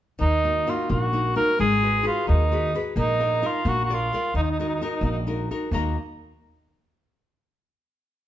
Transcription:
0.19 0.66 D#2 medium
0.19 0.66 D#3 soft
0.19 0.71 D#4 medium
0.44 0.66 A#3 soft
0.44 0.66 D#4 soft
0.44 0.66 F#4 soft
0.67 0.88 A#3 soft
0.67 1.05 D#4 soft
0.67 0.90 F4 medium
0.67 1.06 F#4 soft
0.89 1.35 A#1 medium
0.89 1.12 A#3 soft
0.89 1.34 F#4 medium
1.13 1.34 A#3 soft
1.13 1.35 D#4 soft
1.13 1.35 F#4 soft
1.35 1.54 A#3 soft
1.35 1.54 D#4 soft
1.35 1.54 F#4 soft
1.35 1.58 A#4 loud
1.59 2.05 G#1 medium
1.59 2.05 G#3 medium
1.59 2.04 G#4 medium
1.82 2.02 F#4 soft
1.82 2.02 G#4 soft
1.82 2.03 B4 soft
2.03 2.42 F#4 soft
2.03 2.42 G#4 soft
2.03 2.43 B4 soft
2.07 2.27 F4 medium
2.27 2.73 D#2 medium
2.27 2.73 D#3 soft
2.27 2.77 D#4 medium
2.52 2.73 F#4 soft
2.52 2.74 G#4 soft
2.52 2.74 B4 soft
2.75 2.92 F#4 soft
2.75 2.93 G#4 soft
2.75 2.93 B4 soft
2.96 3.41 A#1 medium
2.96 3.42 A#3 medium
2.96 3.48 D#4 medium
3.19 3.41 D#4 soft
3.19 3.42 F4 soft
3.19 3.42 A#4 soft
3.42 3.60 D#4 soft
3.42 3.61 F4 soft
3.42 3.61 A#4 medium
3.47 3.70 F4 medium
3.65 4.10 A#1 medium
3.65 4.11 A#3 soft
3.65 3.84 F#4 medium
3.85 3.95 F#4 medium
3.90 4.12 F4 soft
3.90 4.36 F4 medium
3.90 4.13 A#4 soft
3.90 4.13 D5 soft
4.13 4.30 F4 soft
4.13 4.31 A#4 soft
4.13 4.31 D5 soft
4.34 4.79 D#2 medium
4.34 4.80 D#3 soft
4.34 4.42 D#4 medium
4.43 4.50 D#4 soft
4.51 4.58 D#4 soft
4.60 4.66 D#4 soft
4.60 4.81 D#4 soft
4.60 4.80 F#4 soft
4.60 4.81 A#4 soft
4.69 4.74 D#4 soft
4.75 4.80 D#4 soft
4.81 5.19 D#4 soft
4.81 4.88 D#4 soft
4.81 5.19 F#4 soft
4.81 5.19 A#4 medium
4.90 4.95 D#4 soft
4.96 5.01 D#4 soft
5.01 5.47 A#1 medium
5.01 5.49 A#3 soft
5.01 5.10 D#4 soft
5.11 5.17 D#4 soft
5.27 5.50 D#4 soft
5.27 5.50 F#4 soft
5.27 5.50 A#4 soft
5.51 5.68 D#4 soft
5.51 5.68 F#4 soft
5.51 5.68 A#4 soft
5.71 5.95 D#2 medium
5.71 5.95 D#3 soft
5.71 5.96 A#3 soft
5.71 5.96 F#4 soft
5.71 5.96 D#5 soft
5.71 5.97 A#5 soft

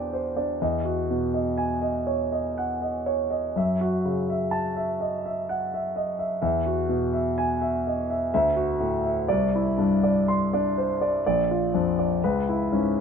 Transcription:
0.00 0.57 E2 soft
0.00 0.63 B2 soft
0.00 0.37 D4 soft
0.00 0.13 C5 soft
0.00 0.37 D5 soft
0.00 0.63 G5 soft
0.00 0.63 B5 soft
0.13 0.37 C5 soft
0.37 0.61 D4 soft
0.37 0.61 D5 soft
0.61 3.52 E2 soft
0.61 1.00 D#5 soft
0.85 1.24 F#4 soft
1.11 1.49 B2 soft
1.34 1.73 D#5 soft
1.57 1.97 G#5 soft
1.82 2.22 D#5 soft
2.07 2.32 C#5 soft
2.32 2.72 D#5 soft
2.58 2.97 F#5 soft
2.81 3.21 D#5 soft
3.06 3.31 C#5 soft
3.31 3.55 D#5 soft
3.56 6.39 F#2 soft
3.56 3.96 E5 soft
3.81 4.20 F#4 soft
4.05 4.44 C#3 soft
4.30 4.68 E5 soft
4.51 4.91 A5 soft
4.76 5.15 E5 soft
5.00 5.25 D#5 soft
5.26 5.63 E5 soft
5.49 5.87 F#5 soft
5.74 6.11 E5 soft
5.96 6.19 D#5 soft
6.19 6.40 E5 soft
6.42 8.27 E2 soft
6.42 6.80 E5 soft
6.66 7.04 F#4 soft
6.89 7.27 B2 soft
7.13 7.51 E5 soft
7.38 7.75 G#5 medium
7.61 7.98 E5 soft
7.87 8.09 D#5 soft
8.10 8.32 E5 soft
8.34 9.26 D2 soft
8.34 8.71 E5 medium
8.57 8.94 F#4 soft
8.80 9.18 A2 soft
9.06 9.29 E5 soft
9.28 11.19 C2 soft
9.28 9.67 D5 medium
9.55 9.92 E4 soft
9.78 10.16 G2 soft
9.78 10.16 D4 soft
10.03 10.41 D5 soft
10.28 10.65 C6 soft
10.53 10.90 D4 soft
10.53 10.90 D5 soft
10.78 11.00 C5 soft
11.01 11.24 D5 soft
11.26 12.20 A#1 soft
11.26 11.63 D5 medium
11.51 11.88 F4 soft
11.74 12.12 F2 soft
11.74 12.12 D4 soft
11.99 12.22 D5 soft
12.24 13.00 C#2 medium
12.24 12.62 B4 soft
12.49 12.87 E4 soft
12.72 13.00 G#2 soft
12.72 13.00 C#4 soft

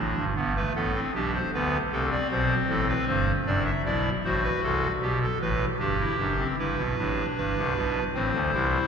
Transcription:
0.00 0.14 A1 medium
0.00 0.14 A2 medium
0.00 0.25 D4 medium
0.16 0.33 G1 medium
0.16 0.33 G2 medium
0.36 0.60 G1 medium
0.36 0.60 G2 medium
0.36 0.53 B3 medium
0.56 0.72 A3 medium
0.56 0.72 B4 medium
0.75 0.99 A1 medium
0.75 0.99 A2 medium
0.75 0.92 B3 medium
0.75 0.99 A4 medium
0.95 1.11 C4 medium
1.15 1.39 B1 medium
1.15 1.39 B2 medium
1.15 1.39 D4 medium
1.15 1.31 G4 medium
1.35 1.51 C5 medium
1.54 1.77 D2 medium
1.54 1.77 D3 medium
1.54 1.78 B3 medium
1.54 1.77 B4 medium
1.92 2.16 C2 medium
1.92 2.16 C3 medium
1.92 3.25 C4 medium
1.92 2.08 A4 medium
2.11 2.27 D5 medium
2.31 2.54 B1 medium
2.31 2.54 B2 medium
2.31 2.55 C5 medium
2.69 2.93 A1 medium
2.69 2.93 A2 medium
2.69 2.86 A4 medium
2.88 3.05 B4 medium
3.08 3.32 G1 medium
3.08 3.32 G2 medium
3.08 3.32 C5 medium
3.46 3.70 F#1 medium
3.46 3.71 F#2 medium
3.46 3.70 D4 medium
3.46 3.63 D5 medium
3.66 3.82 E5 medium
3.85 4.10 B1 medium
3.85 4.10 B2 medium
3.85 4.10 E4 medium
3.85 4.10 D5 medium
4.24 4.49 A1 medium
4.24 4.48 A2 medium
4.24 4.91 F#4 medium
4.24 4.41 C5 medium
4.44 4.60 B4 medium
4.63 4.87 C2 medium
4.63 4.87 C3 medium
4.63 4.87 A4 medium
5.02 5.26 B1 medium
5.02 5.26 B2 medium
5.02 5.18 G4 medium
5.22 5.38 A4 medium
5.41 5.65 A1 medium
5.41 5.65 A2 medium
5.41 5.65 B4 medium
5.79 6.03 G1 medium
5.79 6.04 G2 medium
5.79 5.96 D4 medium
5.79 6.47 G4 medium
6.00 6.16 E4 medium
6.19 6.43 F#1 medium
6.19 6.43 F#2 medium
6.19 6.35 D4 medium
6.39 6.55 C4 medium
6.58 6.75 G1 medium
6.58 6.75 G2 medium
6.58 6.83 E4 medium
6.58 7.26 B4 medium
6.78 6.95 B1 medium
6.78 6.95 B2 medium
6.98 7.22 A1 medium
6.98 7.22 A2 medium
6.98 7.98 D4 medium
7.37 7.54 G1 medium
7.37 7.54 G2 medium
7.37 8.04 B4 medium
7.57 7.73 C2 medium
7.57 7.73 C3 medium
7.76 8.00 B1 medium
7.76 8.00 B2 medium
8.14 8.31 A1 medium
8.14 8.31 A2 medium
8.14 8.39 C4 medium
8.14 8.87 C5 medium
8.34 8.51 D2 medium
8.34 8.51 D3 medium
8.53 8.78 C2 medium
8.53 8.78 C3 medium
8.53 8.87 E4 medium

